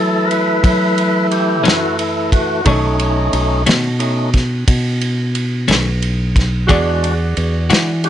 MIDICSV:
0, 0, Header, 1, 6, 480
1, 0, Start_track
1, 0, Tempo, 674612
1, 1889, Time_signature, 12, 3, 24, 8
1, 5758, End_track
2, 0, Start_track
2, 0, Title_t, "Upright piano"
2, 0, Program_c, 0, 0
2, 0, Note_on_c, 0, 64, 50
2, 0, Note_on_c, 0, 68, 49
2, 0, Note_on_c, 0, 69, 57
2, 1855, Note_off_c, 0, 64, 0
2, 1861, Note_off_c, 0, 68, 0
2, 1864, Note_off_c, 0, 69, 0
2, 1884, Note_on_c, 0, 63, 55
2, 1892, Note_on_c, 0, 69, 51
2, 1899, Note_on_c, 0, 73, 60
2, 4737, Note_off_c, 0, 63, 0
2, 4740, Note_off_c, 0, 69, 0
2, 4744, Note_off_c, 0, 73, 0
2, 4745, Note_on_c, 0, 66, 68
2, 4757, Note_on_c, 0, 68, 62
2, 4766, Note_on_c, 0, 74, 75
2, 5758, Note_off_c, 0, 66, 0
2, 5758, Note_off_c, 0, 68, 0
2, 5758, Note_off_c, 0, 74, 0
2, 5758, End_track
3, 0, Start_track
3, 0, Title_t, "Tonewheel organ"
3, 0, Program_c, 1, 16
3, 0, Note_on_c, 1, 52, 51
3, 0, Note_on_c, 1, 57, 47
3, 0, Note_on_c, 1, 64, 58
3, 0, Note_on_c, 1, 69, 88
3, 174, Note_on_c, 1, 70, 59
3, 198, Note_on_c, 1, 71, 89
3, 202, Note_off_c, 1, 69, 0
3, 204, Note_off_c, 1, 70, 0
3, 902, Note_off_c, 1, 71, 0
3, 934, Note_on_c, 1, 67, 89
3, 1165, Note_off_c, 1, 67, 0
3, 1181, Note_on_c, 1, 66, 93
3, 1404, Note_off_c, 1, 64, 0
3, 1408, Note_off_c, 1, 66, 0
3, 1413, Note_on_c, 1, 64, 77
3, 1644, Note_off_c, 1, 64, 0
3, 1656, Note_on_c, 1, 66, 87
3, 1858, Note_off_c, 1, 52, 0
3, 1860, Note_off_c, 1, 57, 0
3, 1885, Note_off_c, 1, 66, 0
3, 1893, Note_on_c, 1, 57, 49
3, 1893, Note_on_c, 1, 61, 47
3, 1901, Note_on_c, 1, 63, 96
3, 2582, Note_off_c, 1, 57, 0
3, 2582, Note_off_c, 1, 61, 0
3, 2589, Note_off_c, 1, 63, 0
3, 2842, Note_on_c, 1, 61, 43
3, 2842, Note_on_c, 1, 63, 51
3, 2844, Note_on_c, 1, 57, 46
3, 3061, Note_off_c, 1, 61, 0
3, 3061, Note_off_c, 1, 63, 0
3, 3062, Note_off_c, 1, 57, 0
3, 4748, Note_on_c, 1, 56, 51
3, 4754, Note_on_c, 1, 62, 49
3, 4762, Note_on_c, 1, 66, 56
3, 5076, Note_off_c, 1, 56, 0
3, 5080, Note_off_c, 1, 62, 0
3, 5084, Note_off_c, 1, 66, 0
3, 5719, Note_on_c, 1, 56, 47
3, 5723, Note_on_c, 1, 62, 44
3, 5726, Note_on_c, 1, 66, 51
3, 5730, Note_on_c, 1, 67, 93
3, 5758, Note_off_c, 1, 56, 0
3, 5758, Note_off_c, 1, 62, 0
3, 5758, Note_off_c, 1, 66, 0
3, 5758, Note_off_c, 1, 67, 0
3, 5758, End_track
4, 0, Start_track
4, 0, Title_t, "Clean electric guitar"
4, 0, Program_c, 2, 27
4, 1164, Note_on_c, 2, 61, 65
4, 1170, Note_on_c, 2, 57, 72
4, 1177, Note_on_c, 2, 52, 60
4, 1178, Note_on_c, 2, 42, 56
4, 1310, Note_off_c, 2, 61, 0
4, 1313, Note_off_c, 2, 57, 0
4, 1317, Note_off_c, 2, 52, 0
4, 1318, Note_off_c, 2, 42, 0
4, 1892, Note_on_c, 2, 47, 63
4, 1894, Note_on_c, 2, 51, 74
4, 1898, Note_on_c, 2, 57, 74
4, 1906, Note_on_c, 2, 61, 69
4, 2034, Note_off_c, 2, 47, 0
4, 2035, Note_off_c, 2, 51, 0
4, 2038, Note_off_c, 2, 57, 0
4, 2041, Note_off_c, 2, 61, 0
4, 2607, Note_on_c, 2, 61, 69
4, 2610, Note_on_c, 2, 57, 74
4, 2614, Note_on_c, 2, 51, 66
4, 2620, Note_on_c, 2, 47, 58
4, 2752, Note_off_c, 2, 61, 0
4, 2753, Note_off_c, 2, 57, 0
4, 2755, Note_off_c, 2, 51, 0
4, 2758, Note_off_c, 2, 47, 0
4, 4041, Note_on_c, 2, 57, 79
4, 4042, Note_on_c, 2, 61, 83
4, 4050, Note_on_c, 2, 47, 64
4, 4050, Note_on_c, 2, 51, 64
4, 4189, Note_off_c, 2, 57, 0
4, 4189, Note_off_c, 2, 61, 0
4, 4193, Note_off_c, 2, 47, 0
4, 4193, Note_off_c, 2, 51, 0
4, 4756, Note_on_c, 2, 52, 80
4, 4759, Note_on_c, 2, 56, 80
4, 4766, Note_on_c, 2, 62, 88
4, 4769, Note_on_c, 2, 66, 90
4, 4906, Note_off_c, 2, 52, 0
4, 4907, Note_off_c, 2, 56, 0
4, 4911, Note_off_c, 2, 62, 0
4, 4912, Note_off_c, 2, 66, 0
4, 5477, Note_on_c, 2, 66, 76
4, 5481, Note_on_c, 2, 62, 78
4, 5482, Note_on_c, 2, 56, 75
4, 5488, Note_on_c, 2, 52, 59
4, 5626, Note_off_c, 2, 66, 0
4, 5628, Note_off_c, 2, 56, 0
4, 5628, Note_off_c, 2, 62, 0
4, 5632, Note_off_c, 2, 52, 0
4, 5758, End_track
5, 0, Start_track
5, 0, Title_t, "Fingered electric bass"
5, 0, Program_c, 3, 33
5, 0, Note_on_c, 3, 54, 91
5, 421, Note_off_c, 3, 54, 0
5, 454, Note_on_c, 3, 54, 87
5, 1173, Note_off_c, 3, 54, 0
5, 1173, Note_on_c, 3, 42, 86
5, 1862, Note_off_c, 3, 42, 0
5, 1892, Note_on_c, 3, 35, 90
5, 2342, Note_off_c, 3, 35, 0
5, 2371, Note_on_c, 3, 35, 89
5, 2591, Note_off_c, 3, 35, 0
5, 2613, Note_on_c, 3, 47, 97
5, 3302, Note_off_c, 3, 47, 0
5, 3328, Note_on_c, 3, 47, 87
5, 4050, Note_on_c, 3, 35, 83
5, 4061, Note_off_c, 3, 47, 0
5, 4740, Note_off_c, 3, 35, 0
5, 4765, Note_on_c, 3, 40, 98
5, 5218, Note_off_c, 3, 40, 0
5, 5246, Note_on_c, 3, 40, 88
5, 5467, Note_off_c, 3, 40, 0
5, 5483, Note_on_c, 3, 52, 97
5, 5758, Note_off_c, 3, 52, 0
5, 5758, End_track
6, 0, Start_track
6, 0, Title_t, "Drums"
6, 219, Note_on_c, 9, 51, 56
6, 290, Note_off_c, 9, 51, 0
6, 454, Note_on_c, 9, 36, 108
6, 455, Note_on_c, 9, 51, 80
6, 525, Note_off_c, 9, 36, 0
6, 526, Note_off_c, 9, 51, 0
6, 696, Note_on_c, 9, 51, 55
6, 767, Note_off_c, 9, 51, 0
6, 935, Note_on_c, 9, 51, 57
6, 1006, Note_off_c, 9, 51, 0
6, 1176, Note_on_c, 9, 51, 73
6, 1196, Note_on_c, 9, 38, 104
6, 1247, Note_off_c, 9, 51, 0
6, 1267, Note_off_c, 9, 38, 0
6, 1415, Note_on_c, 9, 51, 58
6, 1486, Note_off_c, 9, 51, 0
6, 1653, Note_on_c, 9, 36, 72
6, 1656, Note_on_c, 9, 51, 61
6, 1724, Note_off_c, 9, 36, 0
6, 1727, Note_off_c, 9, 51, 0
6, 1889, Note_on_c, 9, 51, 80
6, 1892, Note_on_c, 9, 36, 98
6, 1960, Note_off_c, 9, 51, 0
6, 1963, Note_off_c, 9, 36, 0
6, 2131, Note_on_c, 9, 51, 61
6, 2202, Note_off_c, 9, 51, 0
6, 2369, Note_on_c, 9, 51, 65
6, 2440, Note_off_c, 9, 51, 0
6, 2607, Note_on_c, 9, 51, 82
6, 2627, Note_on_c, 9, 38, 102
6, 2678, Note_off_c, 9, 51, 0
6, 2698, Note_off_c, 9, 38, 0
6, 2846, Note_on_c, 9, 51, 60
6, 2917, Note_off_c, 9, 51, 0
6, 3085, Note_on_c, 9, 51, 61
6, 3087, Note_on_c, 9, 36, 71
6, 3104, Note_on_c, 9, 38, 30
6, 3156, Note_off_c, 9, 51, 0
6, 3159, Note_off_c, 9, 36, 0
6, 3176, Note_off_c, 9, 38, 0
6, 3327, Note_on_c, 9, 36, 107
6, 3328, Note_on_c, 9, 51, 91
6, 3399, Note_off_c, 9, 36, 0
6, 3399, Note_off_c, 9, 51, 0
6, 3567, Note_on_c, 9, 51, 59
6, 3638, Note_off_c, 9, 51, 0
6, 3806, Note_on_c, 9, 51, 66
6, 3877, Note_off_c, 9, 51, 0
6, 4044, Note_on_c, 9, 51, 81
6, 4064, Note_on_c, 9, 38, 114
6, 4115, Note_off_c, 9, 51, 0
6, 4135, Note_off_c, 9, 38, 0
6, 4286, Note_on_c, 9, 51, 60
6, 4357, Note_off_c, 9, 51, 0
6, 4524, Note_on_c, 9, 36, 76
6, 4528, Note_on_c, 9, 51, 58
6, 4548, Note_on_c, 9, 38, 32
6, 4595, Note_off_c, 9, 36, 0
6, 4599, Note_off_c, 9, 51, 0
6, 4619, Note_off_c, 9, 38, 0
6, 4763, Note_on_c, 9, 36, 107
6, 4767, Note_on_c, 9, 51, 77
6, 4834, Note_off_c, 9, 36, 0
6, 4838, Note_off_c, 9, 51, 0
6, 5007, Note_on_c, 9, 51, 59
6, 5079, Note_off_c, 9, 51, 0
6, 5242, Note_on_c, 9, 51, 59
6, 5313, Note_off_c, 9, 51, 0
6, 5481, Note_on_c, 9, 51, 76
6, 5501, Note_on_c, 9, 38, 107
6, 5552, Note_off_c, 9, 51, 0
6, 5572, Note_off_c, 9, 38, 0
6, 5719, Note_on_c, 9, 51, 58
6, 5758, Note_off_c, 9, 51, 0
6, 5758, End_track
0, 0, End_of_file